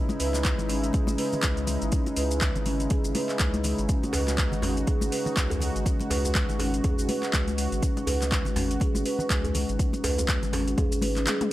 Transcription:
Already playing: analog synth pad C#3 G#3 D#4 E4
0.09 closed hi-hat, muted conga, high conga, shaker
0.20 analog synth bass C#2, marimba B4, open hi-hat, shaker
0.34 clap, high conga, shaker
0.45 marimba G#3, kick, clap, closed hi-hat, shaker
0.58 analog synth bass G#1, closed hi-hat, muted conga, low conga, shaker
0.69 marimba C#4, open hi-hat, high conga, shaker
0.84 closed hi-hat, shaker
0.93 marimba G#4, kick, closed hi-hat, muted conga, shaker
1.07 analog synth bass G#1, marimba C#4, high conga, shaker
1.18 marimba B4, open hi-hat, shaker
1.32 muted conga, low conga, shaker
1.43 analog synth bass C#2, marimba G#3, kick, clap, closed hi-hat, shaker
1.57 closed hi-hat, shaker
1.67 open hi-hat, muted conga, low conga, shaker
1.82 analog synth bass G#1, closed hi-hat, shaker
1.92 marimba C#4, kick, closed hi-hat, shaker
2.06 closed hi-hat, muted conga, high conga, shaker
2.16 analog synth bass C#2, marimba B4, open hi-hat, shaker
2.31 shaker
2.41 marimba G#3, kick, clap, closed hi-hat, shaker
2.56 analog synth bass G#1, closed hi-hat, muted conga, low conga, shaker
2.66 marimba C#4, open hi-hat, high conga, low conga, shaker
2.80 closed hi-hat, shaker
2.90 marimba G#4, kick, closed hi-hat, muted conga, shaker
3.05 analog synth bass G#1, marimba C#4, shaker
3.15 marimba B4, open hi-hat, high conga, shaker
3.29 clap, muted conga, shaker
3.39 analog synth bass C#2, marimba G#3, kick, clap, closed hi-hat, shaker
3.54 closed hi-hat, high conga, shaker
3.64 open hi-hat, muted conga, low conga, shaker
3.79 analog synth bass G#1, closed hi-hat, shaker
3.89 marimba C#4, analog synth pad F#4, kick, closed hi-hat, shaker
4.03 closed hi-hat, muted conga, high conga, shaker
4.13 analog synth bass C#2, marimba B4, open hi-hat, djembe slap, shaker
4.28 clap, high conga, shaker
4.38 marimba G#3, kick, clap, closed hi-hat, shaker
4.52 analog synth bass G#1, closed hi-hat, muted conga, low conga, shaker
4.62 marimba C#4, open hi-hat, djembe slap, djembe tone, high conga, shaker
4.77 closed hi-hat, shaker
4.87 marimba G#4, kick, closed hi-hat, muted conga, shaker
5.01 analog synth bass G#1, marimba C#4, high conga, shaker
5.12 marimba B4, open hi-hat, shaker
5.25 muted conga, low conga, shaker
5.36 analog synth bass C#2, marimba G#3, kick, clap, closed hi-hat, shaker
5.50 closed hi-hat, djembe tone, shaker
5.60 open hi-hat, muted conga, low conga, shaker
5.76 analog synth bass G#1, closed hi-hat, shaker
5.85 marimba C#4, kick, closed hi-hat, shaker
6.00 closed hi-hat, muted conga, high conga, shaker
6.10 analog synth bass C#2, marimba B4, open hi-hat, djembe slap, shaker
6.25 djembe tone, shaker
6.35 marimba G#3, kick, clap, closed hi-hat, shaker
6.49 analog synth bass G#1, closed hi-hat, muted conga, low conga, shaker
6.59 marimba C#4, open hi-hat, djembe slap, high conga, shaker
6.74 closed hi-hat, shaker
6.84 marimba G#4, kick, closed hi-hat, muted conga, djembe tone, shaker
6.98 analog synth bass G#1, marimba C#4, shaker
7.09 marimba B4, open hi-hat, high conga, shaker
7.22 clap, muted conga, shaker
7.33 analog synth bass C#2, marimba G#3, kick, clap, closed hi-hat, shaker
7.48 closed hi-hat, high conga, shaker
7.58 open hi-hat, muted conga, shaker
7.72 analog synth bass G#1, closed hi-hat, shaker
7.82 marimba C#4, kick, closed hi-hat, shaker
7.97 closed hi-hat, muted conga, high conga, shaker
8.07 analog synth bass C#2, marimba B4, open hi-hat, djembe slap, shaker
8.22 clap, high conga, shaker
8.32 marimba G#3, kick, clap, closed hi-hat, shaker
8.45 analog synth bass G#1, closed hi-hat, muted conga, low conga, shaker
8.56 marimba C#4, open hi-hat, djembe slap, djembe tone, high conga, shaker
8.71 closed hi-hat, shaker
8.80 marimba G#4, kick, closed hi-hat, muted conga, shaker
8.95 analog synth bass G#1, marimba C#4, high conga, shaker
9.06 marimba B4, open hi-hat, shaker
9.19 muted conga, low conga, shaker
9.30 analog synth bass C#2, marimba G#3, kick, clap, closed hi-hat, shaker
9.44 closed hi-hat, djembe tone, shaker
9.55 open hi-hat, muted conga, low conga, shaker
9.69 analog synth bass G#1, closed hi-hat, shaker
9.79 marimba C#4, kick, closed hi-hat, shaker
9.93 closed hi-hat, muted conga, high conga, shaker
10.04 analog synth bass C#2, marimba B4, open hi-hat, djembe slap, shaker
10.18 closed hi-hat, djembe tone, high conga, shaker
10.28 marimba G#3, kick, clap, closed hi-hat, shaker
10.43 analog synth bass G#1, closed hi-hat, muted conga, low conga, shaker
10.53 marimba C#4, open hi-hat, djembe slap, high conga, low conga, shaker
10.68 closed hi-hat, shaker
10.77 marimba G#4, kick, closed hi-hat, muted conga, djembe tone, shaker
10.92 analog synth bass G#1, marimba C#4, closed hi-hat, shaker
11.02 marimba B4, open hi-hat, high conga, shaker
11.16 marimba C#4, clap, closed hi-hat, muted conga, shaker
11.26 marimba G#4, clap, closed hi-hat, high tom, low conga, shaker
11.41 closed hi-hat, high tom, high conga, shaker

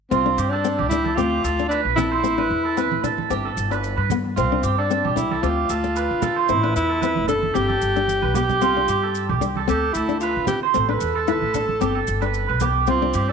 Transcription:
0.11 upright bass C2, alto saxophone C4, nylon-string guitar C4, clean electric guitar F4, maracas
0.26 nylon-string guitar D4
0.38 upright bass G2, clean electric guitar G4, maracas
0.50 alto saxophone D4, clean electric guitar A4
0.65 nylon-string guitar C4, maracas
0.79 upright bass C#2, clean electric guitar G4, high conga
0.89 nylon-string guitar D4, alto saxophone E4, low conga, maracas
1.05 clean electric guitar A4, high conga
1.15 upright bass D2, nylon-string guitar C4, alto saxophone F4, clean electric guitar G4, maracas
1.44 upright bass D2, clean electric guitar A4, maracas
1.59 nylon-string guitar D4, maracas
1.68 alto saxophone D4, clean electric guitar B4, maracas
1.85 upright bass A#1
1.96 nylon-string guitar C4, alto saxophone E4, clean electric guitar A4, high conga, low conga, maracas
2.12 clean electric guitar C5
2.24 upright bass A1, nylon-string guitar C4, maracas
2.38 nylon-string guitar D4, clean electric guitar B4
2.50 upright bass E2
2.65 clean electric guitar A4
2.77 nylon-string guitar C4, clean electric guitar B4, maracas
2.92 upright bass A1, high conga
3.04 nylon-string guitar D4, clean electric guitar A4, low conga, maracas
3.18 high conga
3.30 upright bass G1, nylon-string guitar C4, clean electric guitar G4, maracas
3.45 clean electric guitar A4
3.57 upright bass G1, maracas
3.71 nylon-string guitar D4, clean electric guitar B4, maracas
3.84 maracas
3.97 upright bass G2, clean electric guitar B4
4.10 nylon-string guitar B3, high conga, low conga, maracas
4.36 upright bass C2, nylon-string guitar C4, alto saxophone C4, clean electric guitar F4, maracas
4.52 nylon-string guitar D4
4.63 upright bass G2, clean electric guitar G4, maracas
4.78 alto saxophone D4, clean electric guitar A4
4.91 nylon-string guitar C4, maracas
5.04 upright bass C2, clean electric guitar G4, high conga
5.16 nylon-string guitar D4, alto saxophone E4, low conga, maracas
5.31 clean electric guitar A4, high conga
5.43 upright bass D2, nylon-string guitar C4, alto saxophone F4, clean electric guitar G4, maracas
5.69 upright bass D2, clean electric guitar A4, maracas
5.84 muted nylon-string guitar stroke, maracas
5.96 clean electric guitar B4, maracas
6.11 upright bass D3
6.22 clean electric guitar A4, muted nylon-string guitar stroke, high conga, low conga, maracas
6.36 clean electric guitar C5
6.49 upright bass A1, nylon-string guitar C4, alto saxophone E4, maracas
6.63 nylon-string guitar D4, clean electric guitar B4
6.76 upright bass E2, alto saxophone E4, maracas
6.89 clean electric guitar A4
7.01 nylon-string guitar C4, clean electric guitar B4, high conga, maracas
7.16 upright bass F#1, high conga
7.28 nylon-string guitar D4, clean electric guitar A4, alto saxophone A4, low conga, maracas
7.43 high conga
7.54 upright bass G1, nylon-string guitar C4, clean electric guitar G4, alto saxophone G4, maracas
7.69 clean electric guitar A4, high conga
7.82 upright bass G1, maracas
7.96 nylon-string guitar D4, maracas
8.08 high conga, maracas
8.22 upright bass B1, clean electric guitar B4, high conga
8.35 nylon-string guitar B3, clean electric guitar G4, alto saxophone G4, low conga, maracas
8.49 low conga, maracas
8.61 upright bass C2, nylon-string guitar C4, clean electric guitar F4, maracas
8.77 nylon-string guitar D4
8.88 upright bass G2, clean electric guitar G4, maracas
9.03 clean electric guitar A4
9.15 maracas
9.29 upright bass C2, clean electric guitar G4, high conga
9.41 nylon-string guitar D4, low conga, maracas
9.56 clean electric guitar A4, high conga
9.67 upright bass D2, nylon-string guitar C4, clean electric guitar G4, alto saxophone A4, maracas
9.93 upright bass D2, alto saxophone E4, clean electric guitar A4, maracas
10.09 nylon-string guitar D4, maracas
10.20 alto saxophone F4, clean electric guitar B4, maracas
10.36 upright bass D3
10.47 nylon-string guitar C4, alto saxophone G4, muted clean electric guitar stroke, high conga, low conga, maracas
10.63 clean electric guitar C5
10.74 upright bass A1, nylon-string guitar C4, alto saxophone A4, maracas
10.89 nylon-string guitar D4, clean electric guitar B4
11.01 upright bass E2, maracas
11.16 clean electric guitar A4
11.27 nylon-string guitar E4, clean electric guitar B4, maracas
11.42 upright bass A1, high conga
11.54 nylon-string guitar D4, clean electric guitar A4, low conga, maracas
11.69 high conga
11.81 upright bass G1, nylon-string guitar C4, clean electric guitar G4, maracas
11.95 clean electric guitar A4
12.07 upright bass G1, maracas
12.22 nylon-string guitar D4, clean electric guitar B4, maracas
12.34 maracas
12.49 upright bass B1, clean electric guitar B4
12.60 nylon-string guitar B3, clean electric guitar G4, high conga, low conga, maracas
12.87 upright bass C2, nylon-string guitar C4, alto saxophone C4, clean electric guitar F4, maracas
13.02 nylon-string guitar D4
13.14 upright bass G2, clean electric guitar G4, maracas
13.29 clean electric guitar A4

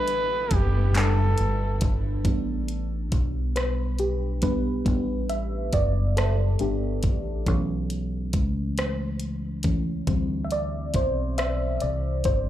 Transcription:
Already playing: fingered electric bass A1, fm electric piano A2 G3 D4 B4, string section D3 G3 A3 B3 E4, flugelhorn B4
0.08 closed hi-hat
0.51 fingered electric bass F#1, flugelhorn G4, kick, closed hi-hat
0.92 fm electric piano A2 G3 D4, clap, closed hi-hat
0.98 flugelhorn A4, fm electric piano B4
1.38 fingered electric bass G1, closed hi-hat
1.81 fingered electric bass G1, kick, closed hi-hat
2.25 fingered electric bass A1, fm electric piano G3 B3 D4, kick, closed hi-hat
2.68 closed hi-hat
3.12 fingered electric bass B1, kick, closed hi-hat
3.56 fm electric piano B4, cross-stick, closed hi-hat
3.99 fm electric piano G4, closed hi-hat
4.42 fm electric piano G3 B3 D4 B4, kick, closed hi-hat
4.85 fingered electric bass A1, fm electric piano G3 B3 D4, kick, closed hi-hat
5.29 fm electric piano E5, closed hi-hat
5.73 fingered electric bass F#1, fm electric piano D5, kick, closed hi-hat
6.17 fm electric piano A4, cross-stick, closed hi-hat
6.59 fingered electric bass G1, fm electric piano G3 B3 D4 G4, closed hi-hat
7.03 fingered electric bass A1, kick, closed hi-hat
7.46 fingered electric bass B1, fm electric piano E3 A3 C#4, kick, closed hi-hat
7.90 closed hi-hat
8.33 fingered electric bass C#2, kick, closed hi-hat
8.78 cross-stick, closed hi-hat
9.20 closed hi-hat
9.63 fm electric piano E3 A3 C#4, kick, closed hi-hat
10.07 fingered electric bass D2, fm electric piano E3 G3 C4, kick, closed hi-hat
10.45 fm electric piano E5
10.51 fm electric piano D5, closed hi-hat
10.94 fingered electric bass B1, fm electric piano C5, kick, closed hi-hat
11.38 fm electric piano E5, cross-stick, closed hi-hat
11.80 fingered electric bass C2, fm electric piano D5, closed hi-hat
12.24 fingered electric bass G1, fm electric piano C5, kick, closed hi-hat

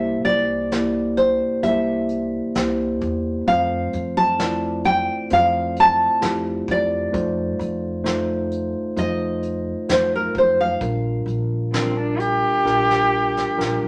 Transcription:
Already playing: upright bass C2, tine electric piano C2 C3 A#3 E4 G4 C5, nylon-string guitar E5
0.25 upright bass C2, nylon-string guitar D5, closed hi-hat
0.71 tine electric piano A#3 E4 G4 D5, snare, closed hi-hat
1.17 nylon-string guitar C5, closed hi-hat
1.63 upright bass C2, tine electric piano A#3 E4 G4 C5, nylon-string guitar E5, closed hi-hat
2.09 closed hi-hat
2.55 upright bass C2, tine electric piano A#3 E4 G4 C5, snare, closed hi-hat
3.01 upright bass E2, kick, closed hi-hat
3.47 tine electric piano F1 F2 A3 C4 F4 C5, upright bass F2, nylon-string guitar F5, kick, closed hi-hat
3.93 upright bass F2, closed hi-hat
4.17 nylon-string guitar A5
4.39 tine electric piano A3 E4 F4 D5, snare, closed hi-hat
4.84 nylon-string guitar G5, closed hi-hat
5.30 upright bass F2, tine electric piano A3 C4 F4 C5, nylon-string guitar F5, closed hi-hat
5.76 nylon-string guitar A5, closed hi-hat
6.21 upright bass F2, tine electric piano A3 E4 F4 G4, snare, closed hi-hat
6.68 upright bass F2, nylon-string guitar D5, kick, closed hi-hat
7.12 tine electric piano F1 F2 A3 D#4 F4 C5, upright bass F2, kick, closed hi-hat
7.59 upright bass F2, closed hi-hat
8.04 tine electric piano A3 D#4 F4 C5, snare, closed hi-hat
8.51 closed hi-hat
8.96 upright bass F2, tine electric piano A3 D#4 F4 C5, nylon-string guitar D#5, closed hi-hat
9.43 closed hi-hat
9.89 upright bass F2, tine electric piano A3 D#4 F4 C5, nylon-string guitar C5, snare, closed hi-hat
10.16 nylon-string guitar A#4
10.35 upright bass F2, nylon-string guitar C5, kick, closed hi-hat
10.61 nylon-string guitar F5
10.81 upright bass A#1, tine electric piano A#1 A#2 G3 D4 F4 A#4, kick, closed hi-hat
11.26 upright bass A#1, closed hi-hat
11.73 tine electric piano G3 D4 F4 A#4, cello C4, snare, closed hi-hat
11.96 cello D4
12.18 cello G4, closed hi-hat
12.65 upright bass A#1, tine electric piano G3 D4 F4 A#4, snare
12.91 snare
13.37 snare
13.58 upright bass A#1, tine electric piano G3 D4 F4 A#4, snare
13.83 upright bass A1

